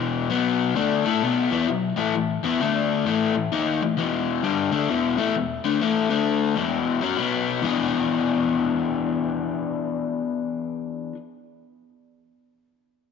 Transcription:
overdriven electric guitar
Already playing: E2 B2 E3
0.30 B2 F#3 B3
0.75 D3 A3 D4
1.05 A3 E4 A4
1.22 B2 F#3 B3
1.51 E3 B3 E4
1.68 B2 F#3
1.96 A2 E3 A3
2.15 A2 E3
2.43 E3 B3 E4
2.60 D3 A3 D4
3.06 A2 E3 A3
3.35 A2 E3
3.52 D#3 A#3 D#4
3.82 A2 E3
3.97 E2 B2 E3
4.43 G2 D3 G3
4.72 D3 A3 D4
4.89 E2 B2 E3
5.17 A2 E3 A3
5.36 E2 B2
5.64 D3 A3 D4
5.81 A2 E3 A3
6.10 D3 A3 D4
6.56 E2 B2 E3
7.02 F#3 C#4 F#4
7.18 B2 F#3 B3
7.62 E3 B3 D4
7.66 G#4

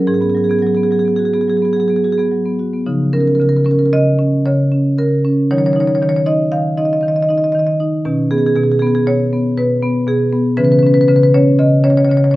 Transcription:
marimba
0.07 G#2 G#4
0.14 G#4
0.21 B3 G#4
0.30 G#4
0.35 F#3 G#4
0.44 G#4
0.49 B3 G#4
0.59 F#3 G#4
0.67 G#4
0.75 B3 G#4
0.83 G#4
0.91 F#3 G#4
0.99 G#4
1.05 B3 G#4
1.16 F#4 G#4
1.25 G#4
1.33 B3 G#4
1.41 G#4
1.48 F#3 G#4
1.57 G#4
1.62 B3 G#4
1.73 F#3 G#4
1.80 G#4
1.88 B3 G#4
1.96 G#4
2.04 F#4 G#4
2.12 G#4
2.18 B3 G#4
2.32 F#3
2.46 B3
2.59 F#4
2.73 B3
2.86 C#3 F3 D#4
3.13 C#4 A#4
3.21 A#4
3.27 A#4
3.35 A#4
3.40 C#3 A#4
3.49 A#4
3.57 A#4
3.65 C#4 A#4
3.71 A#4
3.79 A#4
3.86 A#4
3.93 C#3 D#5
4.19 C#4
4.45 C#3 C#5
4.72 C#4
4.98 C#3 A#4
5.24 C#4
5.51 D#3 F#3 D#4 C#5
5.58 C#5
5.66 C#5
5.73 D#4 C#5
5.80 C#5
5.88 C#5
5.95 C#5
6.02 D#3 C#5
6.09 C#5
6.16 C#5
6.26 D#4 D#5
6.52 D#3 F5
6.77 D#4 D#5
6.85 D#5
6.93 D#5
7.01 D#3 D#5
7.08 D#5
7.16 D#5
7.23 D#5
7.29 D#4 D#5
7.38 D#5
7.44 D#5
7.52 D#3 D#5
7.59 D#5
7.67 D#5
7.80 D#4
8.05 B2 D#3 C#4
8.31 B3 G#4
8.38 G#4
8.46 G#4
8.56 B2 G#4
8.64 G#4
8.72 G#4
8.79 B3 G#4
8.87 G#4
8.95 G#4
9.07 B2 C#5
9.33 B3
9.57 B2 B4
9.82 B3
10.07 B2 G#4
10.32 B3
10.57 C#3 E3 C#4 B4
10.64 B4
10.72 B4
10.79 B4
10.83 C#4 B4
10.94 B4
11.01 B4
11.08 C#3 B4
11.16 B4
11.23 B4
11.34 C#4 C#5
11.59 C#3 D#5
11.84 C#4 C#5
11.90 C#5
11.97 C#5
12.05 C#5
12.09 C#3 C#5
12.17 C#5
12.24 C#5
12.31 C#5

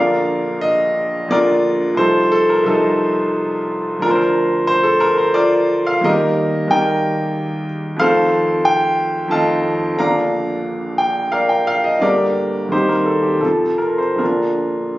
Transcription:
grand piano
Already playing: A#1 D3 A#3 F4 A#4 D5 F5
0.61 D#5
1.28 A#1 D3 A#3 F4 A#4 D5
1.94 C2 F3 D#4 C5
1.98 F4 A4
2.32 A4
2.49 A#4
2.63 C2 F3 A4
2.67 D#4 F4
3.99 D2 F3 D4 F4 A#4
4.10 C5
4.15 A#4
4.67 C5
4.83 A4
5.00 A#4
5.18 C5
5.34 F4 A#4 D5
5.87 F5
6.01 D#2 G3 A#3 D#4 D#5
6.05 G4 A#4
6.68 D#2 G3 A#3 D#4 A#4 G5
6.72 D#5
7.97 F2 D#3 A3 C4 F5
8.01 A4 C5
8.65 G5
9.28 F2 D#3 A3 C4 A5
9.32 D#5 F5
9.96 A#1 D3 F3 A#3 D5 F5 A#5
10.98 G5
11.32 A#4 D5 F5
11.49 G5
11.67 F5
11.84 D#5
11.99 G1 D3 G3 A#3 D5
12.03 G4 A#4
12.69 D#2 D#3 G3 C4 D#4 C5
12.73 G4
12.89 A#4
13.05 A4
13.23 G4
13.38 F2 C3 F3 A4
13.42 C4 F4
13.78 A#4
13.98 C5
14.15 A#1 D3 F3 A#3 A#4
14.20 D4 F4

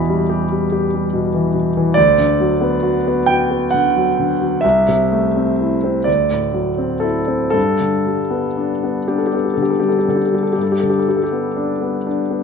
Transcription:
grand piano
Already playing: E2 B2 E3 B5
0.09 G3
0.30 G4
0.51 G3
0.72 G4
0.94 G3
1.13 B2
1.34 E3
1.54 B2
1.77 E3
1.94 D2 D5
2.18 D3
2.40 F#3
2.61 B3
2.83 F#4
3.07 B3
3.26 F#4 G5
3.51 B3
3.71 D3 F#5
3.96 F#3
4.19 D3
4.41 F#3
4.61 C2 E5
4.88 C3
5.12 A3
5.37 C4
5.61 E4
5.84 C4
6.04 D2 D5
6.31 A2
6.53 F#3
6.78 C4
7.00 E4 A4
7.27 C4
7.50 G2 A4
7.81 D3
8.07 G3
8.30 B3
8.57 D4
8.84 B3
9.07 D4 G4
9.18 A4
9.27 G4
9.33 B3 A4
9.45 G4
9.54 D3 A4
9.62 G4
9.70 A4
9.80 G3 G4
9.89 A4
9.99 G4
10.08 D3 A4
10.16 G4
10.25 A4
10.31 G3 G4
10.43 A4
10.53 G4
10.58 G2
10.63 A4
10.72 G4
10.80 D3 A4
10.90 G4
10.99 A4
11.08 G3 G4
11.16 A4
11.23 G4
11.32 B3
11.57 D4
11.81 B3
12.07 D4
12.31 B3

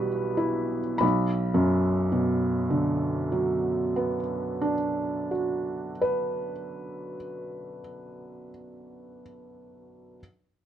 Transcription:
felt piano
Already playing: B1 B2 E3 G3 B4 B5
0.37 E4
0.98 B1 B5
1.54 F#2
2.12 B2
2.70 D3
3.32 F#3
3.96 B3
4.62 D4
5.31 F#4
6.01 B4

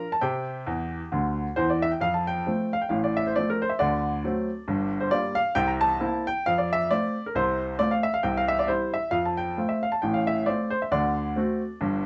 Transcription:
grand piano
Already playing: A#4 A#5
0.12 A5
0.21 C3 G4 G5
0.66 E2 E3
1.12 D2 D3
1.56 E2 E3 C5
1.70 D5
1.82 E5
1.91 G5
2.01 F2 F3 F5
2.14 A5
2.27 G5
2.46 F3 A3 C4
2.73 F5
2.81 G5
2.89 A1 A2 F5
3.04 D5
3.17 E5
3.27 C5
3.36 F3 A3 C4 D5
3.50 A#4
3.62 C5
3.69 E5
3.79 D2 D3 D5
4.24 F#3 A3 C4
4.68 G1 G2
5.00 C5
5.11 G3 A#3 F4 D5
5.35 F5
5.55 C2 C3 G5
5.67 A#5
5.81 A5
6.00 A#3 C4 E4
6.27 G5
6.46 F2 F3 F5
6.58 D5
6.73 E5
6.91 A3 C4 F4 D5
7.26 A#4
7.35 C2 C3 C5
7.79 A3 C4 F4 D5
7.91 F5
8.03 E5
8.14 F5
8.23 C2 C3 G5
8.37 F5
8.48 E5
8.59 D5
8.68 G3 C4 E4 C5
8.94 E5
9.11 F2 F3 F5
9.25 A5
9.37 G5
9.58 A3 C4 F4
9.69 E5
9.83 F5
9.92 A5
10.02 A1 A2 G5
10.14 F5
10.27 E5
10.46 A3 C4 F4 D5
10.70 C5
10.82 E5
10.92 D2 D3 D5
11.36 A3 C4 F#4
11.81 G1 G2

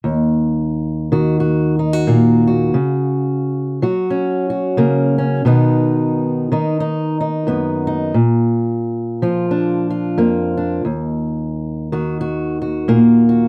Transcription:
steel-string acoustic guitar
0.04 D#2
1.12 D#3 F#4
1.40 F#4
1.79 D#4
1.93 F#4
2.07 A#2 A#3
2.47 F#4
2.74 C#3
3.82 F#3 F#4
4.10 C#4
4.50 F#4
4.77 C#3 A#3
5.18 C#4
5.45 B2 D#3 B3 D#4
6.52 D#3 D#4
6.80 D#4
7.21 D#4
7.47 F#2 B3
7.87 D#4
8.14 A#2
9.22 F3 F4
9.51 D4
9.90 F4
10.18 F2 A#3
10.57 D4
10.85 D#2
11.92 D#3 F#4
12.21 F#4
12.62 F#4
12.88 A#2 A#3
13.29 F#4

